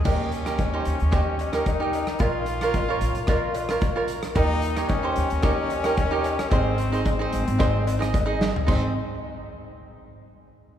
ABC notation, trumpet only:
X:1
M:4/4
L:1/8
Q:"Swing 16ths" 1/4=111
K:Ab
V:1 name="Trumpet"
D6 E2 | F4 F3 z | E2 D6 | C2 C4- C z |
C z6 z |]